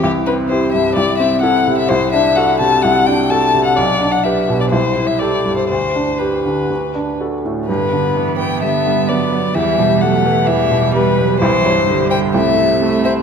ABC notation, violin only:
X:1
M:4/4
L:1/16
Q:1/4=128
K:G
V:1 name="Violin"
G2 B2 c2 e2 d2 e2 f3 e | c2 e2 f2 a2 f2 g2 a3 f | d3 f e3 d c3 e d3 c | c4 B8 z4 |
B6 g2 e4 d4 | e4 f4 e4 B4 | c6 g2 e6 e2 |]